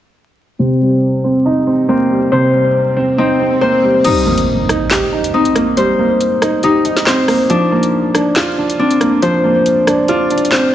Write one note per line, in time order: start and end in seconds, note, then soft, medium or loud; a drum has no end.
0.59 1.67 C3 medium
0.59 1.88 C4 medium
0.59 swell medium
0.81 1.89 G3 medium
1.24 1.65 C4 medium
1.46 2.53 D#4 medium
1.67 2.75 C4 medium
1.89 2.97 A#3 medium
1.89 3.18 C4 medium
2.10 2.52 G3 medium
2.32 3.40 C3 medium
2.32 3.61 C5 loud
2.54 3.61 G3 medium
2.97 3.38 C4 medium
3.18 6.18 C4 medium
3.18 4.05 D#4 medium
3.40 4.05 C4 medium
3.61 4.05 A#3 medium
3.61 5.59 C5 medium
3.83 4.03 G3 medium
4.04 5.12 G3 medium
4.04 5.33 D#4 loud
4.04 closed hi-hat medium
4.04 crash medium
4.04 impact medium
4.26 5.34 A#3 medium
4.38 closed hi-hat medium
4.69 5.11 D#4 medium
4.69 cross-stick loud
4.69 closed hi-hat medium
4.90 5.99 G4 medium
4.90 snare loud
4.90 clap loud
4.90 closed hi-hat medium
5.13 6.20 D#4 medium
5.24 closed hi-hat medium
5.34 6.42 C4 medium
5.34 6.63 D#4 medium
5.45 closed hi-hat medium
5.56 5.97 A#3 medium
5.56 cross-stick medium
5.56 closed hi-hat medium
5.77 6.85 G3 medium
5.77 7.06 C5 loud
5.77 closed hi-hat medium
5.99 7.07 A#3 medium
6.21 closed hi-hat medium
6.42 6.84 D#4 medium
6.42 cross-stick loud
6.42 closed hi-hat medium
6.63 7.56 D#4 medium
6.63 7.50 G4 medium
6.63 closed hi-hat medium
6.85 7.50 D#4 medium
6.85 closed hi-hat medium
6.97 snare medium
6.97 closed hi-hat medium
7.07 7.50 C4 medium
7.07 9.05 C5 medium
7.07 snare loud
7.07 clap medium
7.28 7.50 A#3 medium
7.28 cross-stick medium
7.28 open hi-hat medium
7.50 8.58 F3 medium
7.50 8.79 D4 loud
7.50 closed hi-hat medium
7.71 8.79 A#3 medium
7.83 closed hi-hat medium
8.15 8.56 D4 medium
8.15 cross-stick loud
8.15 closed hi-hat medium
8.36 9.44 F4 loud
8.36 snare loud
8.36 clap loud
8.36 closed hi-hat medium
8.58 9.66 D4 medium
8.70 closed hi-hat medium
8.79 9.87 C4 medium
8.79 10.09 D4 medium
8.91 closed hi-hat medium
9.01 9.43 A#3 medium
9.01 cross-stick medium
9.01 closed hi-hat medium
9.22 10.30 F3 medium
9.22 10.52 C5 loud
9.22 closed hi-hat medium
9.44 10.52 A#3 medium
9.66 closed hi-hat medium
9.87 10.29 D4 medium
9.87 cross-stick loud
9.87 closed hi-hat medium
10.08 10.75 D4 medium
10.08 10.75 F4 loud
10.08 closed hi-hat medium
10.30 10.75 D4 medium
10.30 closed hi-hat medium
10.38 closed hi-hat medium
10.45 closed hi-hat medium
10.52 10.75 C4 medium
10.52 10.75 C5 medium
10.52 snare loud
10.52 clap medium